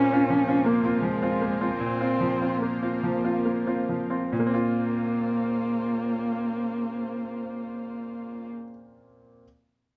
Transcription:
0.00 0.23 A#3 soft
0.00 0.12 C4 soft
0.00 0.66 C#4 medium
0.00 0.13 F4 soft
0.00 4.31 F4 soft
0.00 4.31 A#4 medium
0.00 4.27 C5 medium
0.12 0.28 C4 soft
0.12 0.28 F4 soft
0.30 0.58 F3 soft
0.48 0.63 C4 soft
0.48 0.63 F4 soft
0.64 1.02 A#3 medium
0.64 0.94 A#3 soft
0.84 1.00 C4 soft
0.84 1.00 F4 soft
1.00 1.31 F3 soft
1.00 1.77 G#3 medium
1.22 1.38 C4 soft
1.22 1.38 F4 soft
1.42 1.71 A#3 soft
1.61 1.77 C4 soft
1.61 1.78 F4 soft
1.77 1.99 A#2 soft
1.77 2.60 C4 medium
2.01 2.18 C4 soft
2.01 2.18 F4 soft
2.21 2.52 F3 soft
2.42 2.59 C4 soft
2.42 2.59 F4 soft
2.59 3.87 A#3 medium
2.59 2.94 A#3 soft
2.82 3.00 C4 soft
2.82 3.00 F4 soft
3.03 3.36 F3 soft
3.25 3.43 C4 soft
3.25 3.43 F4 soft
3.45 3.79 A#3 soft
3.67 3.86 C4 soft
3.67 3.86 F4 soft
3.89 4.23 F3 soft
4.10 4.29 C4 soft
4.10 4.30 F4 soft
4.31 8.49 A#2 soft
4.31 8.49 C#3 soft
4.31 8.48 A#3 medium
4.31 8.49 F4 soft
4.31 8.49 C5 soft
4.40 8.56 A#3 soft
4.47 8.63 C4 soft
4.54 8.70 F4 soft

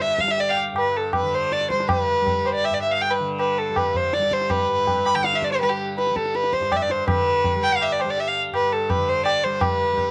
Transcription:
0.00 0.73 G2 medium
0.00 1.22 D3 medium
0.00 0.23 G3 medium
0.00 0.22 E5 loud
0.09 tabla te medium
0.19 0.32 F5 loud
0.19 tabla ke medium
0.23 1.73 G3 medium
0.28 0.41 E5 loud
0.28 tabla te medium
0.38 0.51 D5 loud
0.38 tabla tin medium
0.49 0.51 F5 medium
0.49 0.56 G5 medium
0.54 0.58 F5 medium
0.54 tabla na medium
0.73 2.70 G2 medium
0.73 tabla na medium
0.78 0.98 B4 medium
0.96 1.14 A4 medium
1.13 1.36 B4 medium
1.13 tabla na medium
1.13 tabla ge medium
1.23 3.19 D3 medium
1.34 1.54 C5 medium
1.52 1.70 D5 medium
1.52 tabla te medium
1.61 tabla te medium
1.70 2.21 G3 medium
1.70 1.88 C5 medium
1.70 tabla ke medium
1.80 tabla te medium
1.89 2.47 B4 loud
1.89 tabla na loud
1.89 tabla ge loud
2.21 3.69 G3 medium
2.26 tabla tin medium
2.26 tabla ge medium
2.45 2.54 C5 medium
2.45 tabla na medium
2.54 2.66 D5 medium
2.64 2.75 E5 loud
2.64 tabla na medium
2.70 4.66 G2 medium
2.70 2.81 D5 medium
2.82 2.93 E5 medium
2.91 3.03 F5 loud
3.01 3.12 G5 loud
3.01 tabla tin medium
3.10 3.20 B4 medium
3.20 5.13 D3 medium
3.39 3.60 B4 medium
3.39 tabla na medium
3.58 3.78 A4 medium
3.69 4.19 G3 medium
3.76 3.97 B4 medium
3.76 tabla na medium
3.76 tabla ge medium
3.94 4.15 C5 medium
3.94 tabla ge medium
4.13 4.34 D5 medium
4.13 tabla te medium
4.19 5.62 G3 medium
4.19 tabla te medium
4.31 4.52 C5 medium
4.31 tabla ke medium
4.41 tabla te medium
4.50 5.07 B4 loud
4.50 tabla na loud
4.50 tabla ge loud
4.67 6.60 G2 medium
4.87 tabla tin medium
4.87 tabla ge medium
5.05 5.16 B5 loud
5.05 tabla na medium
5.14 7.07 D3 medium
5.14 5.26 G5 loud
5.24 5.37 F5 loud
5.24 tabla te medium
5.34 5.46 E5 medium
5.34 tabla te medium
5.42 5.51 D5 medium
5.42 tabla ke medium
5.52 5.60 C5 loud
5.52 tabla te medium
5.61 6.11 G3 medium
5.61 5.71 B4 loud
5.61 tabla tin medium
5.69 5.79 G4 medium
5.98 6.17 B4 medium
5.98 tabla te medium
6.07 7.56 G3 medium
6.07 tabla te medium
6.16 6.36 A4 medium
6.16 tabla ke medium
6.26 tabla te medium
6.35 6.55 B4 medium
6.35 tabla te medium
6.44 tabla te medium
6.53 6.74 C5 medium
6.53 tabla ke medium
6.60 8.52 G2 medium
6.60 tabla te medium
6.72 6.78 D5 loud
6.72 tabla na medium
6.72 tabla ge medium
6.76 6.84 E5 medium
6.82 6.92 D5 medium
6.90 7.08 C5 medium
6.90 tabla te medium
7.07 8.97 D3 medium
7.07 7.65 B4 loud
7.07 tabla na loud
7.07 tabla ge loud
7.45 tabla tin medium
7.45 tabla ge medium
7.56 8.04 G3 medium
7.63 7.74 G5 loud
7.73 7.84 F5 loud
7.81 7.94 E5 loud
7.81 tabla na medium
7.92 8.02 D5 medium
8.00 8.12 C5 medium
8.00 tabla na medium
8.04 9.45 G3 medium
8.10 8.21 D5 loud
8.18 8.29 E5 loud
8.18 tabla tin medium
8.27 8.36 F5 medium
8.52 10.11 G2 medium
8.52 8.73 B4 medium
8.52 tabla na medium
8.72 8.91 A4 medium
8.89 9.10 B4 loud
8.89 tabla na medium
8.89 tabla ge medium
8.97 10.11 D3 medium
9.09 9.25 C5 loud
9.26 9.45 D5 loud
9.26 tabla na medium
9.43 9.93 G3 medium
9.43 9.62 C5 medium
9.60 10.11 B4 loud
9.60 tabla na loud
9.60 tabla ge loud
9.93 10.11 G3 medium
9.97 tabla tin medium
9.97 tabla ge medium

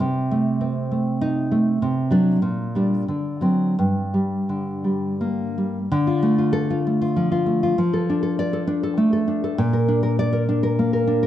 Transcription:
0.00 1.78 C3 medium
0.31 0.90 A3 medium
0.61 1.21 C4 medium
0.91 1.50 A3 medium
1.21 1.70 D#4 medium
1.51 1.82 A3 medium
1.82 2.41 C3 medium
2.11 2.39 F#3 medium
2.11 2.40 D4 medium
2.42 3.06 A#2 medium
2.75 3.05 G3 medium
2.75 3.06 D4 medium
3.08 3.76 D3 medium
3.41 3.74 F#3 medium
3.41 3.75 C4 medium
3.79 5.88 G2 medium
4.14 4.83 G3 medium
4.49 5.58 D3 soft
4.84 5.56 G3 soft
5.21 5.78 A#3 medium
5.58 5.92 G3 soft
5.92 7.73 D3 medium
6.07 6.37 F4 medium
6.23 6.85 A3 medium
6.38 6.69 F4 medium
6.53 6.78 A4 loud
6.70 7.00 F4 medium
6.87 7.45 A3 medium
7.02 7.30 F4 medium
7.16 7.77 F3 medium
7.32 7.62 F4 medium
7.46 7.77 A3 medium
7.63 7.78 F4 medium
7.78 9.54 F3 medium
7.93 8.22 A4 medium
8.10 8.66 D4 medium
8.23 8.39 A4 medium
8.39 8.62 D5 loud
8.53 8.82 A4 medium
8.67 9.26 D4 medium
8.83 9.12 A4 medium
8.97 9.57 A3 medium
9.13 9.43 A4 medium
9.28 9.58 D4 medium
9.44 9.58 A4 medium
9.58 11.27 A#2 loud
9.73 10.02 A#4 medium
9.88 10.47 D4 medium
10.03 10.19 A#4 medium
10.19 10.43 D5 loud
10.33 10.62 A#4 medium
10.49 11.06 D4 medium
10.63 10.92 A#4 medium
10.79 11.27 A#3 medium
10.93 11.22 A#4 medium
11.07 11.27 D4 medium
11.23 11.27 A#4 medium

